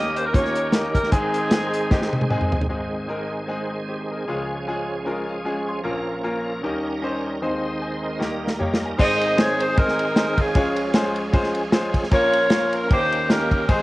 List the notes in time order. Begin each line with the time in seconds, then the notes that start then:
Already playing: D#2 D#3 A#3 C#4 D#4 G4 A#4 D#5
0.16 C5, closed hi-hat
0.25 A#4
0.33 A#3 C#4 D#4 F4 G4 A#4 C#5, kick, closed hi-hat
0.45 snare
0.56 closed hi-hat
0.72 A#3 C#4 D#4 A#4, snare, closed hi-hat
0.95 A#4, kick, closed hi-hat
1.03 snare
1.11 G#1 G#2 G#3 C4 D#4 G#4, kick, closed hi-hat
1.34 closed hi-hat
1.51 G#3 C4 D#4 G#4, snare, closed hi-hat
1.74 closed hi-hat
1.90 G#3 C4 D#4 G4, kick, snare
2.02 snare
2.13 high tom
2.21 high tom
2.30 G#3 C4 D#4 G#4, mid tom
2.41 mid tom
2.52 floor tom
2.61 floor tom
2.69 G#1 G#2 D#3 G#3 C4 D#4 G#4
3.08 G#3 C4 D#4 A#4
3.48 G#3 C4 D#4 G#4
3.89 G4 C5
4.11 A#4 D#5
4.28 C#2 C#3 F3 G#3 C#4 F4 G#4
4.67 G#3 C#4 F4 G#4
5.05 G#3 C#4 F4 A#4
5.29 F5
5.45 G#3 C#4 F4 G#4 G#5
5.69 C6
5.83 A#1 A#2 A#3 C#4 F4 A#4
6.23 A#3 C#4 F4 A#4
6.63 D#2 D#3 G3 C#4 D#4 G4 A#4
7.02 C#4 D#4 G4 C5
7.41 D#2 D#3 G#3 C4 D#4 G#4 C5
7.82 D#5 G#5
8.03 A#4 D#5
8.19 D#2 D#3 G3 A#3 D#4 G4 A#4, snare
8.47 snare
8.59 A#3 D#4 G4 C#5 G5, mid tom
8.74 snare
8.85 G#5
8.98 G#1 G#2 D#3 G#3 C4 D#4 G#4 C5 D#5, kick, crash
9.21 ride
9.37 G#3 C4 D#4 G#4 C5 C#5, snare, ride
9.60 C5, ride
9.76 G#3 C4 D#4 G#4 A#4 C5, kick, ride
9.88 snare
9.99 ride
10.15 G#3 C4 D#4 G#4 C5, snare, ride
10.38 C#4 F4 G#4, kick, ride
10.55 C#2 C#3 F3 G#3 C#4 F4 G#4 C#5, kick, ride
10.76 ride
10.94 G#3 C#4 F4 G#4 C5, snare, ride
11.16 ride
11.33 G#3 C#4 F4 G#4 C5, kick, ride
11.44 snare
11.55 ride
11.72 G#3 C#4 F4 G#4 C5, snare, ride
11.94 kick, ride
12.03 snare
12.10 A#1 A#2 A#3 C#4 F4 A#4 C#5, kick, ride
12.33 ride
12.50 A#3 C#4 F4 A#4 C#5, snare, ride
12.73 A#4, ride
12.90 D#2 D#3 A#3 C#4 D#4 G4 A#4 C5, kick, ride
13.12 ride
13.30 A#3 C#4 D#4 G4 A#4, snare, ride
13.51 kick, ride
13.68 D#2 D#3 G#3 C4 D#4 G#4 C5, kick, ride